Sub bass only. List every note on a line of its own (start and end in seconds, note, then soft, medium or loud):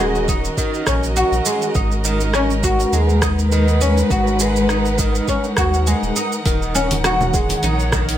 0.00 0.51 D#1 medium
0.87 1.24 A#1 loud
1.32 1.41 A#1 medium
1.75 2.86 G#1 loud
2.93 4.03 D#2 medium
4.11 5.21 G#1 loud
5.57 5.95 D#2 medium
6.03 6.12 D#1 medium
6.46 7.56 D#1 medium
7.63 8.18 A#1 medium